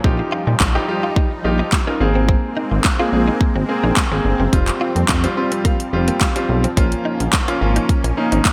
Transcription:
Already playing: F3, downlifter
0.04 A#1 G3 D#4 F4 G4, kick
0.19 muted clean electric guitar stroke
0.32 F4
0.47 A#2 D#4
0.60 A#1, kick, snare, clap
0.75 D#4 F4 G4
0.88 D#4 F4 G4, muted clean electric guitar stroke
1.03 F4
1.16 D#4, kick
1.31 muted clean electric guitar stroke
1.44 A#1 D#4 F4 G4
1.59 D#4
1.72 kick, snare, clap
1.87 C#4 D#4 F4 A#4
2.00 G#1 G#3 A#3 C4 G#4, muted clean electric guitar stroke
2.15 C4
2.29 C4, kick
2.57 D#4
2.71 G#1, muted clean electric guitar stroke
2.84 kick, snare, clap
2.99 A#3 C4 F4 G#4
3.13 A#1 A#3 C4 G#4, muted clean electric guitar stroke
3.28 D#4
3.41 kick
3.56 G#1 C4
3.69 A#3 C4 G#4, muted clean electric guitar stroke
3.84 A#1 D#4
3.97 kick, snare, clap
4.12 G#1 A#3 C4 G#4
4.25 G1, muted clean electric guitar stroke
4.40 F#1 C4
4.53 F1 F3 G3 C4 F4, kick, closed hi-hat
4.68 muted clean electric guitar stroke, clap, closed hi-hat
4.81 F4
4.96 F2 A#3, closed hi-hat
5.09 F2, kick, snare, clap, closed hi-hat
5.24 G3 C4 F4, closed hi-hat
5.37 G3 C4 F4 C6, muted clean electric guitar stroke
5.52 C4, closed hi-hat
5.65 A#3 F5, kick, closed hi-hat
5.80 muted clean electric guitar stroke, closed hi-hat
5.93 F1 G3 C4 F4
6.08 A#3 G5, closed hi-hat
6.21 F5, kick, snare, clap, closed hi-hat
6.36 G3 C4 F4, closed hi-hat
6.49 B1, muted clean electric guitar stroke
6.64 C4, closed hi-hat
6.77 A#1 A#3 C#4 F4, kick, closed hi-hat
6.92 closed hi-hat
7.05 D#4
7.20 A#1, muted clean electric guitar stroke, closed hi-hat
7.33 kick, snare, clap, closed hi-hat
7.48 A#3 C#4 F4, closed hi-hat
7.61 G#1 A#3 C#4 F4, muted clean electric guitar stroke
7.76 D#4, closed hi-hat
7.89 kick, closed hi-hat
8.04 A#1 C#4, closed hi-hat
8.17 A#3 C#4 D#4, muted clean electric guitar stroke
8.32 G#1 D#4, closed hi-hat
8.45 kick, snare, clap, closed hi-hat

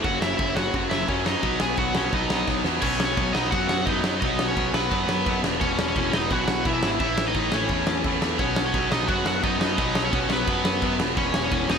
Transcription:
0.03 F#1 F#2 C#3 F#3 F#4 F#5, kick, ride
0.20 F#1 F#2 C#3 F#3 E4 E5, snare
0.37 F#1 F#2 C#3 F#3 E4 E5, kick, ride
0.55 F#1 F#2 C#3 F#3 F#4 F#5, snare
0.74 F#1 F#2 C#3 F#3, kick, ride
0.90 F#1 F#2 C#3 F#3 E4 E5, snare
1.08 F#2 C#3 F#3 C#4 C#5, kick, ride
1.25 F#2 C#3 F#3 D#4 D#5, snare
1.42 B1 B2 F#3 B3, kick, ride
1.59 B1 B2 F#3 B3 G#4 G#5, snare
1.77 B1 B2 F#3 B3 F#4 F#5, kick, ride
1.95 B1 B2 F#3 B3 C#4 C#5, snare
2.12 B1 B2 F#3 B3 D#4 D#5, kick, ride
2.30 B1 B2 F#3 B3, snare
2.47 B1 B2 F#3 B3, kick, snare
2.64 E2 B2 F#3 B3, snare
2.81 B1 B2 F#3 B3 C#4 C#5, kick, crash
3.00 snare
3.05 C#4 C#5
3.16 B1 B2 F#3 B3, kick, crash
3.33 B1 B2 F#3 B3 D#4 D#5, snare
3.51 F#2 B2 F#3 B3 F#4 F#5, kick, crash
3.69 F#2 F#4 F#5, snare
3.85 F#2 B2 F#3 B3 D#4 D#5, kick, crash
4.03 F#2 B2 F#3 B3, snare
4.20 B1 B2 F#3 B3 D#4 D#5, kick, crash
4.39 snare
4.48 C#4 C#5
4.56 B1 B2 F#3 B3, kick, crash
4.73 B1 B2 F#3 B3 B4, snare
4.90 F#2 B2 F#3 B3, kick, crash
5.07 F#2, snare
5.25 F#2 B2 F#3 B3, kick, crash
5.43 E1 E2 B2 E3, snare
5.60 E1 E2 B2 E3 C#4 C#5, kick, crash
5.79 snare
5.88 C#4 C#5
5.95 E1 E2 B2 E3, kick, crash
6.12 E1 E2 B2 E3 D#4 D#5, snare
6.30 B1 E2 B2 E3 F#4 F#5, kick, crash
6.47 B1 F#4 F#5, snare
6.64 B1 E2 B2 E3 E4 E5, kick, crash
6.82 G#1 E2 B2 E3, snare
7.00 A1 A2 E3 A3 E4 E5, kick, crash
7.18 snare
7.27 D#4 D#5
7.34 A1 A2 E3 A3, kick, crash
7.51 A1 A2 E3 A3 C#4 C#5, snare
7.69 E2 A2 E3 A3, kick, crash
7.87 E2, snare
8.04 E2 A2 E3 A3, kick, crash
8.21 E2 A2 E3 A3, snare
8.39 B1 B2 F#3 B3 C#4 C#5, kick, crash
8.56 snare
8.66 C#4 C#5
8.73 B1 B2 F#3 B3, kick, crash
8.90 B1 B2 F#3 B3 D#4 D#5, snare
9.08 F#2 B2 F#3 B3 F#4 F#5, kick, crash
9.24 F#2 F#4 F#5, snare
9.42 F#2 B2 F#3 B3 D#4 D#5, kick, crash
9.59 F#2 B2 F#3 B3, snare
9.76 B1 B2 F#3 B3 D#4 D#5, kick, crash
9.95 snare
10.05 C#4 C#5
10.11 B1 B2 F#3 B3, kick, crash
10.28 B1 B2 F#3 B3, snare
10.32 B3 B4
10.46 F#2 B2 F#3 B3, kick, crash
10.64 F#2, snare
10.82 F#2 B2 F#3 B3, kick, crash
10.98 E1 E2 B2 E3, snare
11.16 E1 E2 B2 E3 C#4 C#5, kick, crash
11.34 snare
11.43 C#4 C#5
11.51 E1 E2 B2 E3, kick, crash
11.69 E1 E2 B2 E3 D#4 D#5, snare

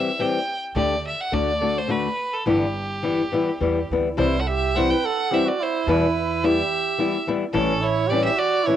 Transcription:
Already playing: C4 G4 E5
0.19 E3 G3 C4 G4 G5
0.75 D2 D3 A3 D4 G4 D5
1.07 E5
1.21 F#5
1.32 D2 D3 A3 D4 F#4 D5
1.61 D3 A3 D4 F#4
1.78 C5
1.88 D3 A3 D4 F#4 B4
2.33 A4
2.46 G1 G2 D3 E3 G3 B3 E4 G4
3.03 E3 G3 B3 E4
3.32 E3 G3 B3 E4
3.60 E2 E3 G3 B3 E4
3.90 D2 E3 G3 B3 E4
4.17 C2 C3 E3 G3 C4 E4 C5
4.40 A4 F#5
4.47 G4 E5
4.76 E3 G3 C4 E4 C5 F#5
4.90 B4 G5
5.05 A4 F#5
5.31 E3 G3 C4 E4 G4 E5
5.46 F#4 D5
5.61 E4 C5
5.87 E2 B2 E3 G3 B3 E4 B4
6.43 E3 G3 B3 E4 G4 E5
6.98 E3 G3 B3 E4
7.27 E3 G3 B3 E4
7.53 A1 A2 E3 G3 C#4 E4 A4
7.81 E4 C#5
8.07 E3 G4 D5
8.12 G3 C#4 E4
8.22 G4 E5
8.36 F#4 D5
8.64 E3 E4 C#5
8.68 G3 C#4 E4

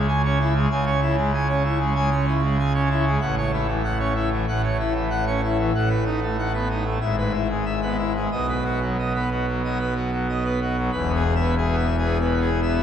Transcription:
Already playing: C#2 C#3
0.08 G#5
0.25 C#4 C#5
0.40 E4
0.56 G#3
0.71 C#2 C#3 G#5
0.86 C#5
1.02 E4
1.17 G#3
1.34 G#5
1.49 C#4 C#5
1.64 E4
1.79 G#3
1.95 G#3 G#5
2.11 C#5
2.27 E4
2.43 G#3
2.59 G#5
2.75 C#4 C#5
2.91 E4
3.07 G#3
3.21 A1 A2 F#5
3.37 C#5
3.53 E4
3.67 E3
3.84 F#5
3.99 C#4 C#5
4.15 E4
4.32 E3
4.47 A1 A2 F#5
4.63 C#5
4.79 E4
4.95 E3
5.10 F#5
5.27 C#4 C#5
5.43 E4
5.59 E3
5.75 A1 A2 F#5
5.89 B4
6.06 D#4
6.23 A3
6.39 F#5
6.54 B3 B4
6.70 D#4
6.85 A3
7.01 G#1 G#2 E5
7.18 B4
7.33 E4
7.50 G#3
7.66 E5
7.82 B3 B4
7.98 E4
8.15 G#3
8.31 B1 B2 D#5
8.49 B4
8.64 F#4
8.82 F#3
8.99 D#5
9.15 B3 B4
9.32 F#4
9.48 F#3
9.64 F#3 D#5
9.79 B4
9.96 F#4
10.12 F#3
10.29 D#5
10.45 B3 B4
10.62 F#4
10.77 F#3
10.92 E1 E2 B4
11.08 B3
11.15 G#4
11.35 E5
11.41 B3
11.57 G#4
11.72 B3
11.76 E5
11.98 G#4
12.04 B3
12.19 B2 B4
12.35 B3
12.41 G#4
12.62 E5
12.68 B3

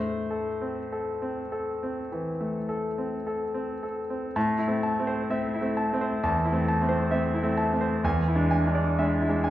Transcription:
Already playing: A2 C5
0.00 A3
0.31 A4
0.61 C4
0.92 A4
1.22 C4
1.52 A4
1.83 C4
2.12 E3
2.41 A3
2.69 A4
2.98 C4
3.27 A4
3.54 C4
3.83 A4
4.10 C4
4.36 A2 A5
4.58 E4
4.68 A3 C4
4.83 A5
5.00 A3 C4
5.07 C5
5.30 A3 C4 E5
5.54 E4
5.61 A3 C4
5.77 A5
5.93 A3 C4
6.01 C5
6.23 E2 A5
6.45 E4
6.52 A3 C4
6.68 A5
6.82 A3 C4
6.89 C5
7.11 A3 C4 E5
7.34 E4
7.43 A3 C4
7.57 A5
7.73 A3 C4
7.81 C5
8.04 E2 G#5
8.28 E4
8.35 G#3 D4
8.51 G#5
8.67 G#3 D4
8.75 D5
8.99 G#3 D4 E5
9.21 E4
9.29 G#3 D4
9.44 G#5

